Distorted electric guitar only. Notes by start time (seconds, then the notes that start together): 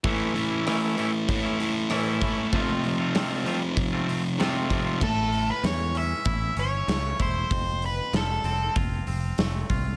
0.04 A2 E3 A3
0.35 A2 E3 A3
0.67 A2 E3 A3
0.97 A2 E3 A3
1.28 A2 E3 A3
1.60 A2 E3 A3
1.90 A2 E3 A3
2.22 A2 E3 A3
2.53 F2 C3 F3
2.85 F2 C3 F3
3.15 F2 C3 F3
3.45 F2 C3 F3
3.77 F2 C3 F3
4.08 F2 C3 F3
4.39 F2 C3 F3
4.70 F2 C3 F3